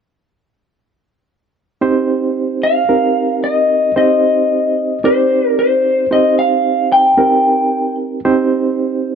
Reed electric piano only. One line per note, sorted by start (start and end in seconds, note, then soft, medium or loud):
1.81 2.83 C4 medium
1.81 2.83 D#4 medium
1.81 2.83 G4 medium
1.81 2.84 C5 medium
2.89 3.91 C4 medium
2.89 3.91 D#4 medium
2.89 3.91 G4 medium
2.89 3.91 A#4 medium
3.96 4.98 C4 medium
3.96 4.98 D#4 medium
3.96 4.98 G4 medium
3.96 4.98 C5 medium
5.04 6.05 C4 medium
5.04 6.05 D#4 medium
5.04 6.05 G4 medium
5.04 6.05 D5 medium
6.11 7.12 C4 medium
6.11 7.12 D#4 medium
6.11 7.12 G4 medium
6.11 7.12 C5 medium
7.18 8.19 C4 medium
7.18 8.19 D#4 medium
7.18 8.19 G4 medium
7.18 8.19 A#4 medium
8.25 9.15 C4 medium
8.25 9.15 D#4 medium
8.25 9.15 G4 medium
8.25 9.15 C5 medium